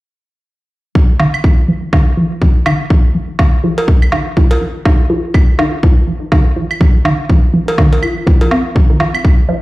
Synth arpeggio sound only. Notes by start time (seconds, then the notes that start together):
0.95 F3
1.20 D#3
1.44 F3
1.68 F3
1.93 D#3
2.17 F3
2.42 F3
2.66 D#3
2.90 F3
3.15 F3
3.39 D#3
3.64 F3
3.88 F3
4.12 D#3
4.37 F3
4.61 F3
4.85 D#3
5.10 F3
5.34 F3
5.59 D#3
5.83 F3
6.07 F3
6.32 D#3
6.56 F3
6.81 F3
7.05 D#3
7.29 F3
7.54 F3
7.78 D#3
8.02 F4
8.27 F3
8.41 F3
8.51 C4
8.75 F3
8.90 D#3
9.00 F3
9.49 F3